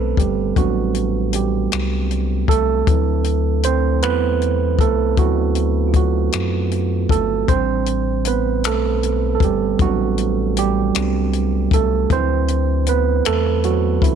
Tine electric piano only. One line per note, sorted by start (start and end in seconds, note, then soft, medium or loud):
0.00 0.20 G3 soft
0.00 0.14 A3 medium
0.00 0.58 B3 medium
0.00 0.58 C4 medium
0.00 0.58 D4 medium
0.00 0.20 A4 medium
0.00 2.89 B4 medium
0.00 2.88 C5 medium
0.19 0.54 G3 medium
0.19 0.58 G4 medium
0.57 1.30 F#3 medium
0.57 1.35 G3 soft
0.57 2.84 B3 soft
0.57 2.84 C4 soft
0.57 2.84 D4 medium
0.57 1.36 F#4 medium
1.35 2.07 G3 soft
1.35 2.07 G4 medium
2.49 3.61 A3 medium
2.49 3.67 A4 medium
2.89 3.99 F#3 soft
2.89 3.66 C4 soft
2.89 4.00 E4 medium
3.65 4.01 C4 medium
3.65 4.04 C5 medium
4.03 4.37 F#3 soft
4.03 4.76 B3 medium
4.03 4.38 C4 soft
4.03 4.38 E4 soft
4.03 4.82 B4 medium
4.80 5.17 A3 medium
4.80 5.16 A4 medium
5.19 5.85 F#3 medium
5.19 6.30 B3 soft
5.19 6.30 C4 soft
5.19 6.30 E4 medium
5.19 5.84 F#4 medium
5.88 5.95 F4 soft
5.96 6.68 F#3 medium
5.96 6.68 F#4 medium
7.11 7.47 A3 medium
7.11 7.50 A4 medium
7.49 9.43 G3 soft
7.49 8.22 C4 medium
7.49 9.76 D4 soft
7.49 8.28 C5 medium
8.27 8.63 B3 medium
8.27 8.66 B4 medium
8.67 9.31 A3 medium
8.67 9.34 A4 medium
9.35 9.41 A4 medium
9.44 9.79 G3 medium
9.44 9.82 G4 medium
9.81 10.54 F#3 medium
9.81 10.31 G3 soft
9.81 10.31 B3 soft
9.81 10.31 C4 soft
9.81 10.32 D4 medium
9.81 10.53 F#4 medium
10.59 10.95 G3 medium
10.59 11.69 G4 medium
10.96 11.30 G3 soft
10.96 11.30 B3 soft
10.96 11.30 C4 soft
10.96 11.30 D4 soft
11.74 12.09 A3 medium
11.74 12.12 A4 medium
12.11 12.62 F#3 soft
12.11 12.84 C4 medium
12.11 12.63 E4 medium
12.11 12.62 B4 soft
12.11 12.90 C5 medium
12.89 13.24 B3 medium
12.89 13.27 B4 medium
13.26 13.62 A3 medium
13.26 13.62 A4 medium
13.65 14.00 F#3 medium
13.65 14.04 F#4 medium
14.03 14.15 E3 medium
14.03 14.15 E4 medium